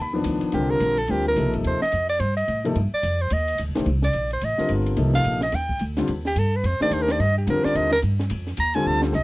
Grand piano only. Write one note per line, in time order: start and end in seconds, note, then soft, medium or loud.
0.02 0.11 B5 loud
0.13 0.50 D#3 medium
0.13 0.51 F3 medium
0.13 0.51 B3 medium
0.13 0.51 D4 medium
0.53 0.94 D3 medium
0.53 0.95 G3 medium
0.53 0.95 C4 medium
0.53 0.95 F4 medium
0.53 0.95 A#4 medium
1.09 1.36 D3 medium
1.09 1.36 G3 medium
1.09 1.36 C4 medium
1.09 1.36 F4 medium
1.09 1.36 A#4 medium
1.37 1.78 C3 medium
1.37 1.78 F3 medium
1.37 1.79 A#3 medium
1.37 1.79 D#4 medium
1.37 1.79 A4 medium
2.64 2.74 C3 medium
2.64 2.75 F3 medium
2.64 2.75 A#3 medium
2.64 2.75 D#4 medium
2.64 2.75 A4 medium
3.75 3.85 D#3 medium
3.75 3.86 A3 medium
3.75 3.86 D4 medium
3.75 3.86 G4 medium
3.75 3.86 C5 medium
4.58 4.95 D3 medium
4.58 4.95 G3 medium
4.58 4.96 C4 medium
4.58 4.96 F4 medium
4.58 4.96 A#4 medium
4.97 5.39 C3 medium
4.97 5.39 F3 medium
4.97 5.39 A#3 medium
4.97 5.39 D#4 medium
4.97 5.39 A4 medium
5.98 6.08 D3 medium
5.98 6.08 G3 medium
5.98 6.08 C4 medium
5.98 6.08 F4 medium
5.98 6.08 C5 medium
6.81 7.18 D#3 medium
6.81 7.18 A3 medium
6.81 7.18 D4 medium
6.81 7.18 G4 medium
6.81 7.19 C5 medium
7.49 7.89 D3 medium
7.49 7.89 G3 medium
7.49 7.89 C4 medium
7.49 7.90 F4 medium
7.49 7.90 A#4 medium
8.75 9.12 D3 medium
8.75 9.12 G3 medium
8.75 9.12 C4 medium
8.75 9.12 F4 medium
8.75 9.12 A4 medium